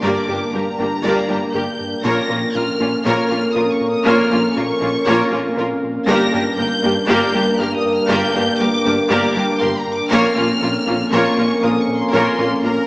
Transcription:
Already playing: G2 A#3 D4 A#4 G5
0.03 G1 G2 G3 A#3 G4 A#4 D5 D6
0.28 G1 G2 A#3 D4 G4
0.53 G1 G2 A#3 G4 A#4 A#5
0.79 G1 G2 A#3 D4 G4
1.03 G1 G2 G3 A#3 G4 A#4 D5
1.28 G1 G2 G3 A#3 D4 G4
1.54 G1 G2 A#3 G4 A#4 G6
1.80 G2
2.04 A#1 F2 A#2 A#3 C#4 F4 A#4 C#5 F5 A#6
2.29 A#1 A#2 A#3 C#4 F4 A#4
2.54 A#1 A#2 A#3 C#4 F4 A#4 F6
2.80 A#1 A#2 A#3 C#4 F4
3.04 A#1 A#2 A#3 F4 A#4 C#5 F6
3.29 A#1 A#2 A#3 C#4 F4
3.55 A#1 A#2 A#3 F4 A#4 D#6
3.73 C#6
3.81 A#2
3.90 D#6
4.05 A#1 A#2 A#3 F4 A#4 C#5 F6
4.31 A#1 A#2 A#3 C#4 F4 A#4
4.56 A#1 A#2 A#3 C#4 F4 A#4 C#6
4.81 A#1 A#2 A#3 C#4 F4
5.06 A#1 A#2 A#3 F4 A#4 C#5
5.31 A#1 A#2 A#3 C#4 F4
5.56 A#1 A#2 A#3 F4 A#4
5.84 A#2
6.06 G1 G2 G3 A#3 D4 G4 A#4 D5 G5 A#6
6.32 G1 G2 A#3 D4 G4
6.57 G1 G2 A#3 G4 A#4 G6
6.82 G1 G2 A#3 D4 G4
7.08 G1 G2 G3 A#3 G4 A#4 D5 G6
7.34 G1 G2 G3 A#3 D4 G4
7.59 G1 G2 A#3 G4 A#4 F6
7.76 D#6
7.85 G2
7.93 F6
8.09 G1 G2 G3 A#3 G4 A#4 D5 G6
8.34 G1 G2 A#3 D4 G4
8.59 G1 G2 A#3 G4 A#4 D6
8.85 G1 G2 A#3 D4 G4
9.09 G1 G2 G3 A#3 G4 A#4 D5 D6
9.35 G1 G2 G3 A#3 D4 G4
9.60 G1 G2 A#3 G4 A#4 C6
9.78 A#5
9.87 G2
9.93 D6
10.10 A#1 F2 A#2 A#3 C#4 F4 A#4 C#5 F5 F6
10.36 A#1 A#2 A#3 C#4 F4 A#4
10.61 A#1 A#2 A#3 C#4 F4 A#4
10.87 A#1 A#2 A#3 C#4 F4
11.12 A#1 A#2 A#3 F4 A#4 C#5 C#6
11.37 A#1 A#2 A#3 C#4 F4
11.62 A#1 A#2 A#3 F4 A#4 D#6
11.81 C#6
11.88 A#2
11.98 C6
12.12 A#1 A#2 A#3 F4 A#4 C#5 C6
12.37 A#1 A#2 A#3 C#4 F4 A#4
12.63 A#1 A#2 A#3 C#4 F4 A#4 A#5

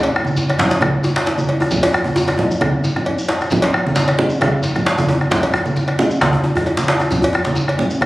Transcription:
0.02 cowbell, djembe slap, high conga
0.16 bombo rim, djembe tone
0.25 high conga, shekere
0.37 djembe slap, djembe bass, shekere
0.50 bombo rim, cowbell
0.59 djembe slap, djembe tone, low conga
0.71 djembe slap, high conga, shekere
0.81 bombo rim, bombo low, cowbell, high conga, djembe bass
1.04 djembe slap, djembe tone, high conga, shekere
1.16 bombo rim, djembe slap
1.26 cowbell, djembe slap, djembe bass
1.38 djembe slap, high conga, shekere
1.49 bombo rim, cowbell, djembe tone
1.60 bombo rim, djembe slap, djembe tone, high conga, shekere
1.71 bombo rim, bombo low, high conga, djembe bass, low conga, shekere
1.83 cowbell, djembe slap, djembe tone, high conga
1.93 bombo rim, djembe tone
2.04 djembe tone, high conga, shekere
2.16 djembe slap, djembe tone, djembe bass, shekere
2.27 bombo rim, cowbell, djembe tone
2.38 djembe tone, low conga
2.51 high conga, shekere
2.61 bombo rim, bombo low, cowbell, high conga, djembe bass
2.84 djembe slap, djembe tone, high conga, shekere
2.96 bombo rim, low conga
3.06 cowbell, djembe bass
3.18 djembe slap, shekere
3.28 bombo rim, cowbell, djembe slap, djembe tone
3.41 bombo rim, djembe slap, high conga, shekere
3.51 bombo low, djembe bass, low conga, shekere
3.62 bombo rim, cowbell, djembe slap
3.74 bombo rim, djembe slap, djembe tone
3.87 high conga
3.96 djembe slap, djembe bass, shekere
4.08 bombo rim, cowbell, djembe slap
4.19 djembe tone, high conga, low conga
4.30 djembe slap, shekere
4.41 bombo rim, bombo low, cowbell, high conga, djembe bass, shekere
4.63 djembe slap, djembe tone, shekere
4.75 bombo rim, high conga, low conga, shekere
4.86 cowbell, djembe slap, djembe bass
4.98 djembe tone, high conga, shekere
5.09 cowbell, djembe tone, shekere
5.21 bombo rim, djembe slap
5.31 bombo rim, bombo low, djembe slap, high conga, low conga, djembe bass, shekere
5.43 cowbell, djembe slap, djembe tone, high conga
5.54 bombo rim, djembe tone
5.66 high conga, shekere
5.76 djembe slap, djembe bass, shekere
5.88 bombo rim, cowbell
5.99 djembe tone, low conga
6.11 high conga, shekere
6.21 bombo rim, bombo low, cowbell, djembe slap, high conga, djembe bass
6.33 djembe tone
6.44 djembe slap, djembe tone, high conga
6.56 bombo rim, djembe bass, low conga
6.66 cowbell, djembe tone, djembe bass
6.77 djembe slap, high conga, shekere
6.88 bombo rim, cowbell, djembe slap, djembe tone
6.99 bombo rim, djembe slap, djembe tone, high conga, shekere
7.11 bombo rim, bombo low, djembe tone, high conga, djembe bass, low conga, shekere
7.22 cowbell, djembe slap, high conga, djembe bass
7.33 bombo rim, djembe tone
7.45 djembe slap, high conga, shekere
7.55 djembe slap, djembe bass, shekere
7.68 bombo rim, cowbell
7.78 djembe tone, low conga
7.90 high conga, shekere
8.01 bombo rim, bombo low, cowbell, high conga, djembe bass

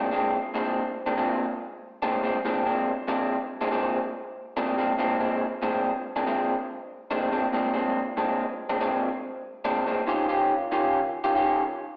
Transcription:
Already playing: A#2 G#3 C4 D4
0.11 A#2 G#3 C4 D4
0.54 A#2 G#3 C4 D4
1.06 A#2 G#3 C4 D4
1.17 A#2 G#3 C4 D4
2.02 A#2 G#3 C4 D4
2.23 A#2 G#3 C4 D4
2.45 A#2 G#3 C4 D4
2.65 A#2 G#3 C4 D4
3.08 A#2 G#3 C4 D4
3.61 A#2 G#3 C4 D4
3.71 A#2 G#3 C4 D4
4.57 A#2 G#3 C4 D4
4.78 A#2 G#3 C4 D4
4.98 A#2 G#3 C4 D4
5.20 A#2 G#3 C4 D4
5.62 A#2 G#3 C4 D4
6.16 A#2 G#3 C4 D4
6.26 A#2 G#3 C4 D4
7.11 A#2 G#3 C4 D4
7.31 A#2 G#3 C4 D4
7.52 A#2 G#3 C4 D4
7.74 A#2 G#3 C4 D4
8.17 A#2 G#3 C4 D4
8.69 A#2 G#3 C4 D4
8.80 A#2 G#3 C4 D4
9.65 A#2 G#3 C4 D4
9.86 A#2 G#3 C4 D4
10.07 D#3 C#4 F4 G4
10.29 D#3 C#4 F4 G4
10.72 D#3 C#4 F4 G4
11.24 D#3 C#4 F4 G4
11.34 D#3 C#4 F4 G4

